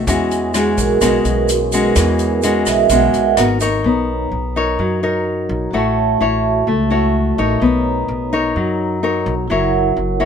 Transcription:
Already playing: F#4
0.06 E2 E3 G#3 C#4 F#4, kick, closed hi-hat, shaker
0.31 closed hi-hat, shaker
0.54 G#3 C#4 F#4 G#4, cross-stick, closed hi-hat, shaker
0.78 B1 A#4, kick, closed hi-hat, shaker
1.01 B1 B2 G#3 C#4 F#4 B4, kick, cross-stick, closed hi-hat, shaker
1.25 B1, closed hi-hat, shaker
1.49 closed hi-hat, shaker
1.72 G#3 C#4 F#4, closed hi-hat, shaker
1.96 E2 E3, kick, cross-stick, closed hi-hat, shaker
2.19 closed hi-hat, shaker
2.42 G#3 C#4 F#4 D#5, closed hi-hat, shaker
2.66 B1 E5, cross-stick, closed hi-hat, shaker
2.89 B1 B2 G#3 C#4 F#4 F#5, kick, closed hi-hat, shaker
3.14 B1, closed hi-hat, shaker
3.36 G#1 B2 A#3 B3 F#4 A#4, cross-stick, closed hi-hat
3.60 D#4 A#4 C#5, closed hi-hat, shaker
3.83 B1 B3 D#4 C#5
3.88 A#5
4.32 B1
4.56 D#4 A#4 C#5
4.79 F#2 F#3
5.03 D#4 A#4 C#5
5.49 B1
5.71 A1 A3 E4 F#4 C#5 E5
5.77 A5
6.21 A1 E4 F#4 C#5
6.67 C#2 A3
6.90 E4 F#4 C#5
7.38 A1 D#4 A#4 C#5
7.60 B1 B3 D#4 C#5
7.66 A#5
8.08 B1
8.33 D#4 A#4 C#5
8.56 F#2 F#3
9.03 D#4 A#4 C#5
9.26 B1
9.48 F#1 F#3 E4 A#4 C#5
9.53 F#5
9.97 F#1
10.20 E4 A#4 C#5

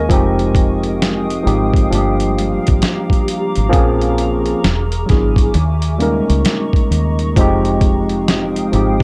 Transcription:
Already playing: D#2 D#3 G#3 A#3 C#4 G#4 A#4 D#5 F5
0.09 F1 F3 G#3 C4 D#4 F5 G5 D#6, kick, closed hi-hat
0.13 G4
0.39 closed hi-hat
0.55 kick, closed hi-hat
0.83 closed hi-hat
1.02 snare, closed hi-hat
1.30 closed hi-hat
1.43 G#1 F3 G#3 C4 D#4
1.47 G4, closed hi-hat
1.74 kick, closed hi-hat
1.90 G1 F3 G3 A#3 D4 G4 A#5 D6, closed hi-hat
1.95 G4
2.20 closed hi-hat
2.39 closed hi-hat
2.67 G#1, kick, closed hi-hat
2.82 snare, closed hi-hat
3.10 kick, closed hi-hat
3.28 closed hi-hat
3.56 G#1, closed hi-hat
3.69 A#1 F3 A#3 C4 C#4, kick
3.73 G#4, closed hi-hat
4.01 closed hi-hat
4.18 closed hi-hat
4.46 closed hi-hat
4.64 E1, snare, closed hi-hat
4.92 closed hi-hat
5.06 G#1 F#3 B3 D4 E4, kick, snare, closed hi-hat
5.10 G#4
5.36 kick, closed hi-hat
5.54 D#2 G#3 D#5 A#5 C#6, closed hi-hat
5.82 closed hi-hat
5.98 G3 A#3 C#4 D#4, closed hi-hat
6.02 G#3 A#4
6.30 C#2, closed hi-hat
6.45 snare, closed hi-hat
6.73 kick, closed hi-hat
6.91 D#2, closed hi-hat
7.19 closed hi-hat
7.36 F1 F3 G#3 C4 D#4 F5 G5 D#6, kick, closed hi-hat
7.41 G4
7.65 closed hi-hat
7.81 kick, closed hi-hat
8.09 closed hi-hat
8.28 snare, closed hi-hat
8.56 closed hi-hat
8.71 G#1 F3 G#3 C4 D#4, closed hi-hat
8.75 G4

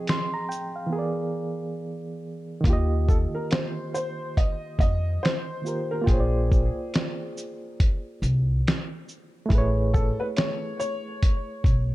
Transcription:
Already playing: F3 C4 G#4 D#5 G5 C#6
0.07 C6, snare, closed hi-hat
0.34 A#5
0.49 G5, shaker
0.76 F5
0.86 E3 B3
0.93 G#4 A#4
0.99 D5
2.61 D#2 D#3 A#3, kick
2.65 F4, closed hi-hat
2.70 G4 D#5
3.09 A4, kick, shaker
3.35 A#4
3.51 C5, snare, closed hi-hat
3.94 C5, shaker
4.37 D#5, kick, closed hi-hat
4.79 F2 D#5, kick, closed hi-hat, shaker
5.23 C5, snare, closed hi-hat
5.62 D#3 A#3 F4
5.66 G4 A#4, shaker
5.91 A#4
6.01 A#3 F4
6.06 A#1 G#4 G5, kick, closed hi-hat
6.11 C5 C#5
6.20 D5
6.52 kick, shaker
6.94 snare, closed hi-hat
7.37 shaker
7.80 kick, closed hi-hat
8.22 C2, closed hi-hat, shaker
8.68 snare, closed hi-hat
9.09 shaker
9.46 A3 E4
9.50 A1 G#4, kick, closed hi-hat
9.55 B4 C#5
9.94 A4, kick, shaker
10.20 B4
10.37 C#5, snare, closed hi-hat
10.80 C#5, shaker
11.23 kick, closed hi-hat
11.64 B1, kick, closed hi-hat, shaker

